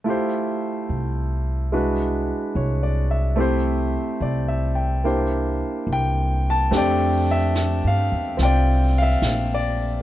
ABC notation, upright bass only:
X:1
M:4/4
L:1/8
Q:"Swing" 1/4=72
K:F
V:1 name="Upright bass" clef=bass
z2 C,,3 z C,,2- | C,, z C,,3 z C,,2 | F,,2- (3F,, G,, E,, C,,2 B,,,2 |]